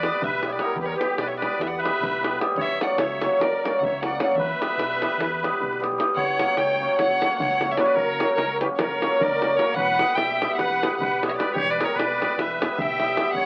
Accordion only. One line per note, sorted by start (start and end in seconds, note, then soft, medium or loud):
0.00 0.22 B4 medium
0.24 0.50 B4 medium
0.49 0.51 C#5 medium
0.54 0.61 B4 medium
0.62 0.78 A#4 medium
0.80 0.86 G4 medium
0.86 0.94 A#4 medium
0.96 1.20 G4 medium
1.21 1.28 B4 medium
1.27 1.35 C#5 medium
1.38 1.60 B4 medium
1.61 1.69 B4 medium
1.66 1.76 D5 soft
1.77 2.40 B4 loud
2.57 2.79 C#5 medium
2.83 3.00 D5 medium
2.99 3.40 C#5 medium
3.39 3.77 A#4 medium
3.77 3.81 D5 medium
3.85 4.04 C#5 medium
4.05 4.20 D5 medium
4.21 4.27 D5 medium
4.28 4.35 D5 medium
4.38 5.83 B4 medium
6.16 6.55 C#5 loud
6.57 6.97 C#5 medium
6.98 7.37 C#5 medium
7.41 7.68 C#5 medium
7.71 7.79 C#5 medium
7.78 7.83 B4 medium
7.78 7.87 C#5 medium
7.85 7.95 B4 medium
7.94 8.34 A#4 medium
8.35 8.58 A#4 medium
8.60 8.68 G4 medium
8.79 9.17 A#4 medium
9.18 9.55 A#4 medium
9.57 9.74 A#4 medium
9.75 10.17 B4 medium
10.16 10.58 E5 medium
10.57 10.96 B4 medium
10.99 11.27 B4 medium
11.27 11.36 C#5 medium
11.37 11.53 B4 medium
11.53 11.69 G4 medium
11.69 11.84 B4 medium
11.82 11.95 A#4 medium
11.95 12.35 B4 medium
12.37 12.79 B4 medium
12.79 13.34 E5 medium
13.36 13.46 C#5 medium